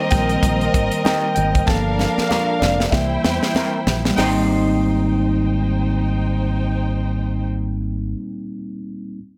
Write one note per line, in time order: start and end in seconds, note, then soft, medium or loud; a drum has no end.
0.00 0.11 D#3 medium
0.00 0.11 G3 soft
0.00 0.11 A#3 medium
0.00 1.64 C4 medium
0.00 1.64 A#4 medium
0.00 1.69 A#4 medium
0.00 1.69 C5 medium
0.00 1.64 D#5 loud
0.11 0.36 A#1 medium
0.11 0.39 D#3 soft
0.11 0.39 G3 soft
0.11 0.40 A#3 medium
0.11 0.70 G5 loud
0.11 kick loud
0.11 snare soft
0.11 closed hi-hat medium
0.11 muted conga soft
0.11 high conga medium
0.11 low conga medium
0.29 closed hi-hat soft
0.43 0.67 A#1 medium
0.43 kick medium
0.43 closed hi-hat medium
0.43 muted conga soft
0.43 high conga medium
0.61 closed hi-hat soft
0.73 0.88 G#1 medium
0.73 1.06 D#5 medium
0.73 kick medium
0.73 closed hi-hat medium
0.92 closed hi-hat medium
1.05 1.25 D#4 medium
1.05 1.25 G4 medium
1.05 1.26 A#4 medium
1.05 1.34 G5 medium
1.05 snare loud
1.05 high conga medium
1.35 1.61 G#1 medium
1.35 1.68 G5 medium
1.35 closed hi-hat medium
1.35 low conga medium
1.55 kick medium
1.55 closed hi-hat medium
1.67 2.06 G1 medium
1.67 2.58 F3 medium
1.67 2.58 A#3 medium
1.67 2.90 D4 medium
1.67 2.58 A4 soft
1.67 2.90 A#4 medium
1.67 2.90 F5 medium
1.67 2.26 A5 loud
1.67 kick loud
1.67 snare medium
1.67 low conga medium
1.99 snare medium
1.99 high conga medium
2.18 muted fingered electric bass stroke soft
2.18 snare medium
2.29 2.50 D4 medium
2.29 2.50 F4 medium
2.29 2.51 A#4 medium
2.29 2.62 F5 medium
2.29 snare medium
2.29 muted conga soft
2.29 high conga medium
2.60 2.86 F1 medium
2.60 2.93 D5 medium
2.60 snare medium
2.60 muted conga soft
2.60 high conga medium
2.60 low conga medium
2.80 snare medium
2.91 3.17 C2 medium
2.91 3.36 E3 medium
2.91 3.36 G3 soft
2.91 3.36 A#3 medium
2.91 4.15 E4 medium
2.91 4.15 C5 medium
2.91 3.50 E5 medium
2.91 4.15 G5 medium
2.91 kick medium
2.91 snare medium
2.91 muted conga soft
2.91 high conga medium
3.24 3.38 E2 medium
3.24 snare medium
3.24 muted conga soft
3.43 snare medium
3.55 3.75 C4 medium
3.55 3.75 E4 medium
3.55 3.76 A#4 medium
3.55 snare loud
3.55 muted conga soft
3.55 high conga medium
3.87 4.10 A#1 medium
3.87 snare medium
3.87 muted conga soft
3.87 low conga medium
4.05 snare medium
4.11 8.10 G3 medium
4.15 8.14 G#1 medium
4.15 8.13 A#3 medium
4.15 8.17 D#4 medium
4.15 7.43 D#4 medium
4.15 8.18 G4 medium
4.15 7.44 C5 medium
4.15 7.44 G5 medium
4.15 snare medium
4.15 open hi-hat medium
4.15 high conga medium
4.21 8.15 C4 medium
4.21 8.20 C5 medium
4.26 8.18 D#4 medium